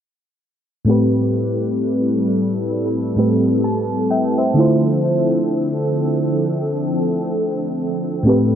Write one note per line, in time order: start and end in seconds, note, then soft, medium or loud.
0.85 3.12 A2 medium
0.85 4.52 G3 medium
0.85 3.13 A3 medium
0.85 8.55 C4 medium
0.85 3.14 C4 medium
0.85 4.52 E4 medium
0.85 4.52 A4 medium
0.89 3.15 G4 medium
0.89 3.15 B4 medium
3.16 4.55 A2 medium
3.16 4.54 A3 soft
3.16 4.56 C4 soft
3.16 4.57 G4 soft
3.16 3.65 B4 medium
3.64 4.08 A5 medium
4.10 4.36 E5 medium
4.10 4.35 G5 medium
4.38 4.59 C5 soft
4.38 4.81 E5 medium
4.54 8.20 D3 medium
4.54 8.22 F3 medium
4.54 8.21 A3 medium
4.54 8.22 D4 medium
4.54 8.22 E4 medium
4.54 8.22 A4 medium
4.58 8.22 F4 medium
4.58 8.23 C5 medium
8.23 8.55 A2 medium
8.23 8.55 G3 medium
8.23 8.55 A3 medium
8.23 8.55 C4 medium
8.23 8.55 E4 medium
8.23 8.55 A4 medium
8.27 8.55 G4 medium
8.27 8.55 B4 medium